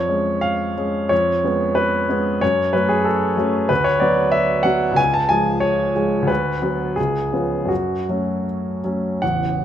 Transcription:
Already playing: F2 C#5
0.08 G#3 C#4
0.41 F5
0.77 G#3 C#4
1.09 F2 C#5
1.44 G#3 B3 C#4
1.75 B4
2.09 G#3 B3 C#4
2.41 F#2 C#5
2.73 F#3 A3 C#4 B4
2.89 G#4
3.04 A4
3.37 F#3 A3 C#4
3.69 D2 B4
3.84 C#5
4.00 F#3 B3 F#4 D5
4.32 E5
4.63 F#3 B3 F#4 F#5
4.92 C#2
4.96 G#5
5.14 A5
5.29 F3 G#3 G#4 G#5
5.60 C#5
5.95 F3 G#3 G#4
6.22 D2
6.28 B4
6.62 F#3 B3 F#4
6.96 C#2 G#4
7.33 F3 B3 C#4
7.65 F#2 F#4
8.09 F#3 A3 C#4
8.84 F#3 A3 C#4
9.22 A0 A1 F#5

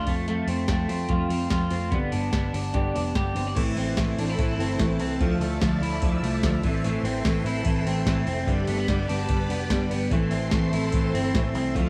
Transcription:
Already playing: F3 D4 F4
0.06 F2 A3 C4 F4, kick, open hi-hat
0.27 F3 A3 C4 F4, closed hi-hat
0.47 F2 A3 C4 F4, open hi-hat
0.67 F2 F3 A3 C4 F4, kick, snare, closed hi-hat
0.88 F2 A3 C4 F4, open hi-hat
1.09 F2 F3 A3 C4 F4, kick, closed hi-hat
1.29 F2 C4 F4, open hi-hat
1.33 A3
1.50 F2 F3 A3 C4 F4, kick, snare, closed hi-hat
1.71 F2 A3 C4 F4, open hi-hat
1.92 G1 G2 D3 G3 B3 D4, kick, closed hi-hat
2.12 G1 G3 B3 D4, open hi-hat
2.33 G1 D3 G3 B3 D4, kick, snare, closed hi-hat
2.53 G1 G3 B3 D4, open hi-hat
2.73 G1 G2 D3 G3 B3 D4 G4, kick, closed hi-hat
2.94 F1 G3 B3 D4, open hi-hat
3.13 G1 D3 G3 B3 D4 G4, kick, snare, closed hi-hat
3.34 G1 G3 B3 C4 D4, open hi-hat
3.47 D4
3.55 A1 A2 E3 A3 C4 E4 A4 C5 A5, kick, open hi-hat, crash
3.75 A1 A3 C4 E4, open hi-hat
3.97 A1 A2 E3 A3 C4 E4, kick, snare, open hi-hat
4.17 A1 A3 C4 D4 E4, open hi-hat
4.29 E4
4.38 A1 E3 A3 C4 E4, kick, open hi-hat
4.58 G1 A3 C4 E4, open hi-hat
4.79 A1 A2 E3 A3 C4 E4, kick, snare, open hi-hat
5.00 C2 A3 C4 E4, open hi-hat
5.21 D2 D3 F3 A3 E4 D5 E5, kick, open hi-hat
5.41 D2 F3 A3 E4, open hi-hat
5.61 D2 D3 F3 A3 E4, kick, snare, open hi-hat
5.81 D2 F3 A3 E4, open hi-hat
6.02 D2 D3 F3 A3 E4, kick, open hi-hat
6.22 C2 F3 A3 E4, open hi-hat
6.43 D2 D3 F3 A3 E4, kick, snare, open hi-hat
6.63 A1 E3 A3 C4 E4 A4 C5 C6, kick, open hi-hat
6.84 A2 E3 A3 C4 E4, open hi-hat
7.03 A1 A3 C4 E4, open hi-hat
7.25 A1 A2 E3 A3 C4 E4, kick, snare, open hi-hat
7.44 A1 A3 C4 E4, open hi-hat
7.63 A1 E3 A3 C4 E4, kick, open hi-hat
7.85 A1 A3 C4 E4, open hi-hat
8.06 A1 A2 E3 A3 C4 E4, kick, snare, open hi-hat
8.26 F1 A3 C4 E4, open hi-hat
8.44 G1 G2 D3 G3 B3 D4 G4 B4 D5 B5, kick, open hi-hat
8.67 G1 G3 A3 B3 D4, open hi-hat
8.78 B3
8.87 G1 G2 D3 G3 B3 D4, kick, snare, open hi-hat
9.08 G1 G3 B3 D4, open hi-hat
9.28 G1 D3 G3 B3 D4, kick, open hi-hat
9.49 F1 G3 B3 D4, open hi-hat
9.70 G1 G2 D3 G3 B3 D4, kick, snare, open hi-hat
9.90 G1 G3 B3 D4, open hi-hat
10.10 A1 A2 E3 A3 C4 E4 A4 C5 E5 C6, kick, open hi-hat
10.31 A1 A3 C4 E4, open hi-hat
10.51 A1 A2 E3 A3 C4 E4, kick, snare, open hi-hat
10.72 A1 A3 C4 E4, open hi-hat
10.92 A1 E3 A3 C4 E4, kick, open hi-hat
11.14 G1 A3 C4 E4, open hi-hat
11.34 A1 A2 E3 A3 C4 E4, kick, snare, open hi-hat
11.54 C2 A3 C4 E4, open hi-hat
11.75 D2 D3 F3 A3 E4 D5 A5, kick, open hi-hat

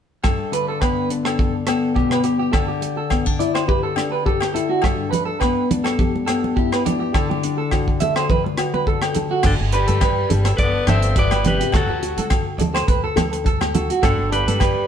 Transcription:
0.23 G2 A4, kick, cross-stick, low agogo
0.52 D3 B4, closed hi-hat
0.68 A4
0.81 B3 B4, kick, cross-stick, low agogo
1.10 D4, closed hi-hat
1.25 A4, cross-stick, low agogo
1.39 muted nylon-string guitar stroke, kick
1.67 B3 A4, cross-stick, closed hi-hat, low agogo
1.95 B2 G4, kick
2.11 B4, cross-stick, low agogo
2.24 G4, closed hi-hat
2.40 G4
2.53 D3 A4, kick, cross-stick, low agogo
2.68 G4
2.81 muted nylon-string guitar stroke, closed hi-hat
2.97 A4
3.10 B3, kick, cross-stick, low agogo
3.26 D4, kick
3.39 E4 D5, closed hi-hat
3.54 C5, cross-stick, low agogo
3.68 G4 B4, kick
3.83 A4
3.96 D4, cross-stick, closed hi-hat, low agogo
4.12 B4
4.26 G4 A4, kick
4.41 G4, cross-stick, low agogo
4.54 E4 A4, closed hi-hat
4.70 F#4
4.82 G2 A4, kick, cross-stick, low agogo
5.11 B4, muted nylon-string guitar stroke, closed hi-hat, low conga
5.25 A4
5.40 B3 B4, kick, cross-stick, low agogo
5.71 D4, closed hi-hat, high conga, low conga
5.84 A4, cross-stick, low agogo
5.99 G4, kick, low conga
6.16 high conga
6.26 B3 A4, cross-stick, closed hi-hat, low agogo
6.44 high conga
6.56 E4 G4, kick
6.72 B4, cross-stick, low agogo
6.86 D4 G4, closed hi-hat, high conga, low conga
7.00 G4
7.14 D3 A4, kick, cross-stick, low agogo
7.30 G4, high conga
7.43 D4, closed hi-hat
7.58 A4
7.71 F#4, kick, cross-stick, low agogo
7.88 kick
8.00 A4 E5, closed hi-hat, high conga, low conga
8.16 C5, cross-stick, low agogo
8.30 B4, kick, low conga
8.44 muted clean electric guitar stroke, high conga
8.58 F#4, cross-stick, closed hi-hat, low agogo
8.74 B4, high conga
8.87 A4, kick
9.02 G4, cross-stick, low agogo
9.15 A4, muted clean electric guitar stroke, closed hi-hat, low conga
9.31 F#4
9.43 G1 G2 D3 D4 A4, muted clean electric guitar stroke, kick, cross-stick, crash, low agogo
9.60 G1
9.72 G3 D4 G4 B4, closed hi-hat
9.88 G2 A4, closed hi-hat, high conga
10.01 D3 B4, kick, cross-stick, closed hi-hat, low agogo
10.30 G1 A4, closed hi-hat, high conga, low conga
10.45 A4, cross-stick, closed hi-hat, low agogo
10.57 G1 D3 B4 D5, kick, closed hi-hat
10.61 B3
10.87 G1 C4 D4 A4 C5 E5, cross-stick, closed hi-hat, high conga, low conga, low agogo
11.03 closed hi-hat
11.16 B3 G4 B4 D5, kick, closed hi-hat
11.31 B4, cross-stick, high conga, low agogo
11.44 C3 G3 G4 B4, closed hi-hat, high conga, low conga
11.61 G4, closed hi-hat
11.72 D2 D3 F#4 A4, kick, cross-stick, closed hi-hat, low agogo
11.77 F#3 A4
11.87 D2 G4
12.03 F#4, closed hi-hat
12.16 D3 A4, closed hi-hat, high conga
12.30 D4, kick, cross-stick, closed hi-hat, low agogo
12.58 D2 A4, muted clean electric guitar stroke, closed hi-hat, high conga, low conga
12.74 C5, cross-stick, closed hi-hat, low agogo
12.88 D2 A2 B4, kick, closed hi-hat
13.04 A4
13.16 D2 A4, cross-stick, closed hi-hat, high conga, low conga, low agogo
13.33 muted clean electric guitar stroke, closed hi-hat
13.44 D4 A4, kick, closed hi-hat
13.61 G4, cross-stick, high conga, low agogo
13.75 F#4 A4, closed hi-hat, high conga, low conga
13.90 F#4, closed hi-hat
14.02 G1 G2 D3 D4 A4, kick, cross-stick, closed hi-hat, low agogo
14.18 G1
14.32 G3 D4 G4 B4, closed hi-hat
14.46 G2 A4, closed hi-hat, high conga
14.60 D3 B4, kick, cross-stick, closed hi-hat, low agogo

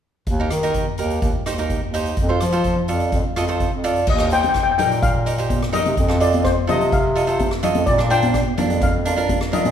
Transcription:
0.27 D#2, kick, closed hi-hat
0.40 D#4 G4 A#4
0.50 D#3, cross-stick, closed hi-hat
0.63 D#4 G4 A#4, closed hi-hat
0.74 kick, closed hi-hat
0.98 D#2 D#4 G4 A#4, closed hi-hat
1.10 closed hi-hat
1.22 D#2, kick, closed hi-hat
1.46 D#2 D#4 G4 C5, cross-stick, closed hi-hat
1.58 D#4 G4 A#4, closed hi-hat
1.70 kick, closed hi-hat
1.83 D#2
1.94 D#4 G4 C5, closed hi-hat
2.06 closed hi-hat
2.17 F2, kick, closed hi-hat
2.29 F4 A4 C5
2.40 F3, cross-stick, closed hi-hat
2.52 F4 A4 C5, closed hi-hat
2.64 kick, closed hi-hat
2.88 F2 F4 A4 D5, closed hi-hat
3.00 closed hi-hat
3.12 F2, kick, closed hi-hat
3.36 F2 F4 A4 D#5, cross-stick, closed hi-hat
3.48 F4 A4 C5, closed hi-hat
3.60 kick, closed hi-hat
3.72 F2
3.84 F4 A4 D5, closed hi-hat
3.96 closed hi-hat
4.07 D#2 D#5, kick, crash
4.19 D#4 G4 A#4, cross-stick
4.30 D#4 G4 C5 G5, closed hi-hat
4.41 G5, closed hi-hat, high conga
4.49 G5
4.54 G5, kick, cross-stick, closed hi-hat
4.63 G5
4.71 G5
4.78 A#2 D#4 G4 A#4 G5, closed hi-hat, low conga
4.85 G5
4.91 closed hi-hat
5.03 F5, kick, closed hi-hat
5.26 D#4 G4 A#4, closed hi-hat
5.38 D#4 G4 C5, closed hi-hat
5.50 kick, closed hi-hat, high conga
5.63 cross-stick
5.72 D#4 G4 A#4 D#5, closed hi-hat, low conga
5.85 C3, closed hi-hat, high conga
5.97 F2, kick, closed hi-hat
6.08 F4 A4 C5, cross-stick
6.20 F4 A4 D5 D#5, closed hi-hat
6.33 closed hi-hat, high conga
6.44 C5, kick, cross-stick, closed hi-hat
6.67 C3 F4 A4 C5 D#5, closed hi-hat, high conga, low conga
6.81 closed hi-hat
6.92 F5, kick, closed hi-hat
7.15 F4 A4 D#5, closed hi-hat
7.27 F4 A4 C5, closed hi-hat
7.39 kick, closed hi-hat, high conga
7.51 cross-stick
7.63 F4 A4 D#5, closed hi-hat, low conga
7.74 F2, closed hi-hat, high conga
7.86 A#2 D5, kick, closed hi-hat
7.98 D4 F4 A#4, cross-stick
8.10 D4 F4 C5 G5, closed hi-hat
8.22 closed hi-hat, high conga
8.34 kick, cross-stick, closed hi-hat
8.58 F2 D4 F4 A#4, closed hi-hat, high conga, low conga
8.70 closed hi-hat
8.82 F5, kick, closed hi-hat
9.05 D4 F4 A#4, closed hi-hat
9.16 D4 F4 A#4, closed hi-hat
9.29 kick, closed hi-hat, high conga
9.41 cross-stick
9.52 D4 F4 A#4 D#5, closed hi-hat, low conga
9.65 A#2, closed hi-hat, high conga

